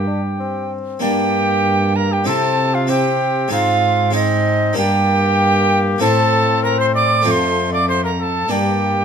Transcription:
Already playing: harpsichord G2 A#3 D4, cello G2, cornet G4, recorder G5
0.07 bassoon D4
0.40 bassoon C4
0.99 cello G2, harpsichord G2 A#3 D4, bassoon A#3, cornet G4, recorder G5
1.96 cornet A#4, recorder A#5
2.12 cornet G4, recorder G5
2.24 harpsichord C3 C4 E4, cello C3, bassoon C4, cornet A4, recorder A5
2.74 cornet F4, recorder F5
2.87 harpsichord C4 E4, bassoon C4, cornet G4, recorder G5
3.48 harpsichord G#2 G#3 C4 D#4
3.52 cello G#2, bassoon C4, cornet F4, recorder F5
4.11 harpsichord G#3 C4 D#4, cornet D#4
4.15 bassoon C4, recorder D#5
4.73 harpsichord G2 A#3 D4 G4, bassoon A#3, cornet G4
4.77 cello G2, recorder G5
5.98 cello A2, harpsichord A2 A3 C4 E4, bassoon C4, cornet A4, recorder A5
6.63 cornet A#4, recorder A#5
6.78 cornet C5, recorder C6
6.95 cornet D5, recorder D6
7.22 cello F2, harpsichord A3 C4 F4, cornet C5
7.26 harpsichord F2, bassoon A3, recorder D6
7.31 recorder C6
7.73 cornet D5, recorder D6
7.88 cornet C5, recorder C6
8.04 cornet A#4, recorder A#5
8.19 cornet A4, recorder A5 A#5
8.48 harpsichord G2 A#3 D4, cello G2, bassoon A#3, cornet G4, recorder G5

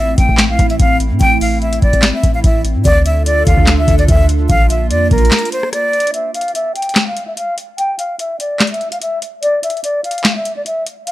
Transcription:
Already playing: 808-style bass A1, analog synth pad A3 C4 E4, flute E5
0.18 808-style bass A1, flute G5, kick, closed hi-hat
0.29 kick
0.38 snare, clap, closed hi-hat
0.49 808-style bass A#1, flute F5
0.59 808-style bass A1, kick, closed hi-hat
0.70 flute E5, closed hi-hat
0.80 808-style bass A1, flute F5, kick, closed hi-hat
1.00 closed hi-hat
1.11 808-style bass A2
1.21 808-style bass A1, flute G5, kick, closed hi-hat
1.41 flute F5, open hi-hat
1.62 flute E5, closed hi-hat
1.73 closed hi-hat
1.82 808-style bass A1, flute D5, kick, closed hi-hat
1.93 kick, closed hi-hat
2.02 snare, clap, closed hi-hat
2.14 flute E5
2.23 808-style bass A1, kick, closed hi-hat
2.34 flute F5
2.44 808-style bass A1, flute E5, kick, closed hi-hat
2.65 closed hi-hat
2.75 808-style bass A2
2.85 808-style bass D2, analog synth pad D3 D4 F4 A4, flute D5, kick, closed hi-hat
3.06 flute E5, closed hi-hat
3.26 flute D5, closed hi-hat
3.47 808-style bass D2, flute F5, kick, closed hi-hat
3.58 808-style bass D2, kick
3.67 snare, clap, closed hi-hat
3.78 flute E5
3.88 808-style bass D2, kick, closed hi-hat
3.99 flute D5, closed hi-hat
4.08 808-style bass D2, flute E5, kick, closed hi-hat
4.29 closed hi-hat
4.49 808-style bass A#1, analog synth pad A#3 F4, flute F5, kick, closed hi-hat
4.70 flute E5, closed hi-hat
4.90 808-style bass F2, flute D5, closed hi-hat
5.11 808-style bass A#1, flute A#4, kick, closed hi-hat
5.18 closed hi-hat
5.25 closed hi-hat
5.31 snare, clap, closed hi-hat
5.39 closed hi-hat
5.45 closed hi-hat
5.52 flute C5, closed hi-hat
5.63 cross-stick
5.73 flute D5, cross-stick, closed hi-hat
5.93 closed hi-hat
6.00 closed hi-hat
6.07 closed hi-hat
6.14 flute E5, closed hi-hat
6.34 flute F5, closed hi-hat
6.41 closed hi-hat
6.48 closed hi-hat
6.55 flute E5, closed hi-hat
6.76 flute G5, closed hi-hat
6.82 closed hi-hat
6.89 closed hi-hat
6.95 snare, clap, closed hi-hat
7.07 flute F5
7.17 closed hi-hat
7.27 flute E5
7.37 flute F5, closed hi-hat
7.58 closed hi-hat
7.78 flute G5, closed hi-hat
7.99 flute F5, closed hi-hat
8.19 flute E5, closed hi-hat
8.40 flute D5, closed hi-hat
8.60 snare, clap, closed hi-hat
8.67 closed hi-hat
8.71 flute E5, closed hi-hat
8.81 closed hi-hat
8.92 flute F5, closed hi-hat
9.02 flute E5, closed hi-hat
9.22 closed hi-hat
9.43 flute D5, closed hi-hat
9.63 flute E5, closed hi-hat
9.70 closed hi-hat
9.77 closed hi-hat
9.84 flute D5, closed hi-hat
10.04 flute F5, closed hi-hat
10.11 closed hi-hat
10.18 closed hi-hat
10.24 snare, clap, closed hi-hat
10.36 flute E5
10.45 closed hi-hat
10.56 flute D5
10.66 flute E5, closed hi-hat
10.86 closed hi-hat
11.07 flute F5, closed hi-hat

